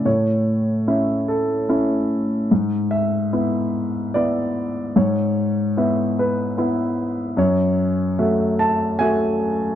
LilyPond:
\new Staff \with { instrumentName = "Grand piano" } { \time 3/4 \key e \mixolydian \tempo 4 = 74 << { cis''4. a'4 r8 | r8 e''4. d''4 | cis''4. b'4 r8 | cis''4. a''8 gis''4 | } \\ { a,4 <cis' e' e''>4 <cis' e' e''>4 | gis,4 <b e' e''>4 <b e' e''>4 | gis,4 <b e' e''>4 <b e' e''>4 | fis,4 <a fis' e''>4 <a fis' e''>4 | } >> }